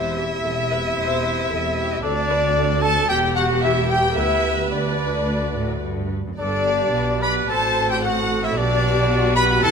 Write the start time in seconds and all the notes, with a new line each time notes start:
Already playing: E1 E2 C4 E4 G4 C5 E5
0.18 G4
0.44 E1 E2 A4
0.71 B4
0.97 E1 E2 C5
1.50 E1 E2 A4
1.77 G4
2.02 D2 D4 F#4 A4 D5
2.29 B4
2.56 A4
2.82 A4 A5
3.08 E1 E2 B3 G4 G5
3.35 F#4 F#5
3.62 E4 E5
3.90 G4 G5
4.17 D2 E4 B4 E5
4.73 D2 D4 D5
5.28 A3 F#4
5.56 A2
5.84 G2
6.27 F#2
6.39 G1 G2 B3 D4 G4 A4 D5
6.68 G4
6.94 B1 B2 B4
7.22 B4 D5 B5
7.49 A1 A2 C4 F#4 A4 C5 A5
7.90 G4 G5
8.03 F#4 A4 F#5
8.43 E4 E5
8.56 B1 B2 B3 D4 G4 D5
8.84 G4
9.10 F#4
9.36 B4 B5
9.62 E1 E2 E4 A4 A5